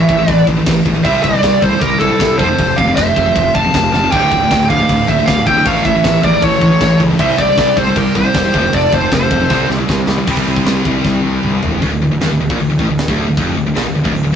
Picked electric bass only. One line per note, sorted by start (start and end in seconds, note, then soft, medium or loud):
0.09 0.22 A1 medium
0.28 0.41 A1 loud
0.48 0.60 A1 loud
0.66 0.79 A1 medium
0.86 0.98 A1 loud
1.05 1.18 C2 loud
1.24 1.37 C2 loud
1.43 1.56 C2 loud
1.62 1.75 C2 medium
1.82 1.95 C2 loud
2.01 2.14 C2 loud
2.20 2.41 C2 medium
2.39 2.52 F1 loud
2.59 2.71 F1 loud
2.78 2.91 F1 loud
2.97 3.10 F1 loud
3.16 3.29 F1 medium
3.36 3.48 F1 loud
3.55 3.68 F1 medium
3.74 3.87 F1 medium
3.94 4.06 F1 loud
4.12 4.25 D1 loud
4.32 4.45 D1 medium
4.51 4.64 D1 loud
4.70 4.83 D1 medium
4.89 5.02 D1 loud
5.09 5.21 D1 medium
5.28 5.40 D1 medium
5.47 5.60 D1 loud
5.66 5.79 A1 loud
5.85 5.98 A1 medium
6.04 6.17 A1 loud
6.24 6.36 A1 loud
6.42 6.55 A1 loud
6.61 6.74 A1 loud
6.81 6.94 A1 loud
7.00 7.13 C#2 loud
7.19 7.32 C2 loud
7.39 7.51 C2 medium
7.57 7.70 C2 loud
7.77 7.90 C2 medium
7.96 8.09 C2 loud
8.15 8.28 C2 medium
8.35 8.47 E1 loud
8.54 8.67 F1 loud
8.73 8.86 F1 loud
8.93 9.05 F1 loud
9.12 9.25 F1 medium
9.31 9.44 F1 medium
9.51 9.63 C2 loud
9.69 9.82 C2 medium
9.89 10.02 C2 loud
10.07 10.20 C2 loud
10.28 10.43 C2 medium
10.46 10.62 C2 medium
10.66 10.81 C2 loud
10.86 11.01 C2 medium
11.05 11.20 C2 loud
11.23 11.39 C2 medium
11.44 11.59 C2 medium
11.63 11.78 E1 medium
11.82 11.91 D1 medium
11.92 12.00 D1 medium
12.01 12.10 D1 medium
12.11 12.20 D1 medium
12.21 12.30 D#1 medium
12.30 12.39 D1 medium
12.41 12.50 D1 medium
12.50 12.59 A#1 medium
12.61 12.69 D1 medium
12.70 12.78 D1 medium
12.79 12.88 A1 medium
12.89 13.07 D1 medium
13.08 13.26 D1 medium
13.28 13.37 D1 medium
13.38 13.55 F1 medium
13.57 13.66 D1 medium
13.66 13.75 D1 medium
13.75 13.85 A#1 medium
13.86 13.95 D1 medium
13.95 14.04 D1 medium
14.05 14.14 D1 medium
14.14 14.23 D1 medium
14.24 14.33 D1 medium